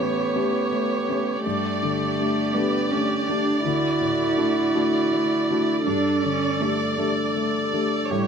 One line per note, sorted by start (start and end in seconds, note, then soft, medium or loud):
0.00 1.41 A2 soft
0.00 0.20 E3 soft
0.00 0.31 A3 soft
0.00 1.44 B3 medium
0.00 0.31 C#4 soft
0.00 0.31 G4 soft
0.00 3.66 G4 soft
0.00 1.41 C#5 soft
0.35 0.68 A3 soft
0.35 0.68 C#4 soft
0.35 0.68 G4 soft
0.71 1.07 A3 soft
1.09 1.41 A3 soft
1.09 1.41 C#4 soft
1.09 1.42 G4 soft
1.44 3.61 G2 soft
1.44 2.55 A3 medium
1.44 5.82 D5 soft
1.83 2.40 D3 soft
2.20 2.52 A3 soft
2.20 2.52 D4 soft
2.20 2.52 G4 soft
2.54 2.88 A3 soft
2.54 2.92 B3 medium
2.54 2.88 D4 soft
2.54 2.88 G4 soft
2.91 3.28 A3 soft
2.91 3.30 C#4 medium
3.29 3.61 A3 soft
3.29 3.64 D4 medium
3.29 3.61 D4 soft
3.29 3.61 G4 soft
3.64 5.82 D2 medium
3.64 5.82 E4 medium
3.64 5.86 F#4 soft
4.01 4.60 A2 soft
4.37 4.71 A3 soft
4.37 4.71 D4 soft
4.37 4.71 F#4 soft
4.74 5.08 A3 soft
4.74 5.08 D4 soft
4.74 5.08 F#4 soft
5.12 5.49 A3 soft
5.50 5.83 A3 soft
5.50 5.83 D4 soft
5.50 5.83 F#4 soft
5.86 8.06 G2 medium
5.86 6.24 D4 medium
5.86 8.12 A4 medium
5.86 8.06 D5 medium
6.23 6.83 D3 soft
6.23 6.62 C#4 medium
6.60 6.98 A3 medium
6.60 6.94 A3 soft
6.60 6.94 D4 soft
6.60 6.95 G4 soft
6.98 7.31 A3 soft
6.98 7.31 D4 soft
6.98 7.32 G4 soft
7.35 7.72 A3 soft
7.73 8.07 A3 soft
7.73 8.07 D4 soft
7.73 8.07 G4 soft
8.09 8.27 A2 medium
8.09 8.27 G3 medium
8.09 8.27 G4 medium
8.09 8.27 C#5 medium